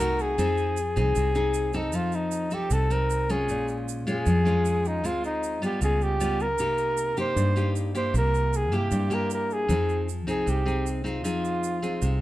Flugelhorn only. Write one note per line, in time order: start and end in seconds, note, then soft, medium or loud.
0.00 0.23 A#4 loud
0.21 0.98 G#4 loud
0.99 1.78 G#4 loud
1.76 1.97 D#4 medium
1.96 2.17 F4 medium
2.15 2.55 D#4 medium
2.54 2.74 G4 medium
2.73 2.93 A4 medium
2.92 3.33 A#4 medium
3.31 3.81 G#4 loud
4.10 4.89 G#4 loud
4.87 5.07 D#4 medium
5.06 5.24 F4 medium
5.26 5.61 D#4 medium
5.65 5.81 G4 medium
5.83 6.05 G#4 medium
6.03 6.44 G4 medium
6.42 7.18 A#4 loud
7.20 7.73 C5 loud
7.97 8.14 C5 medium
8.18 8.58 A#4 loud
8.56 8.77 G#4 loud
8.76 9.15 G4 loud
9.14 9.32 A#4 medium
9.33 9.54 A#4 medium
9.53 10.02 G#4 loud
10.30 10.51 G#4 medium
10.50 10.87 G4 medium
11.07 12.21 F4 medium